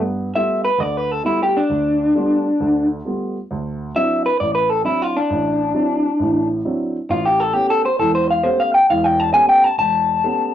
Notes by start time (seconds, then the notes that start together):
Already playing: G2 B3
0.34 G3 A3 B3 F4 E5
0.65 B4
0.78 D2 D3 D5
0.97 B4
1.12 A4
1.23 G3 A3 B3 E4 F4
1.43 G4
1.57 D4
1.69 D2
2.15 G3 A3 B3 F4
2.60 D2 D3
3.05 G3 A3 B3 F4
3.51 D2
3.95 F#3 C4 D4 E4 E5
4.26 B4
4.40 A1 D5
4.55 B4
4.70 A4
4.84 F#3 C4 D4 E4
5.02 F4
5.17 D4
5.30 A1
5.74 F#3 C4 D4 E4
6.19 A1 A2
6.65 F#3 C4 D4 E4
7.09 A1 F4
7.25 G4
7.40 A4
7.53 A3 B3 C#4 G4
7.70 A4
7.85 C5
7.99 E1 E2 A4
8.15 C5
8.31 F5
8.43 A3 B3 C#4 G4 C5
8.60 F5
8.74 G5
8.89 E1 E2 F5
9.04 G5
9.20 A5
9.34 A3 B3 C#4 G4 G#5
9.49 G5
9.64 A5
9.78 E1 A5
10.24 A3 B3 C#4 G4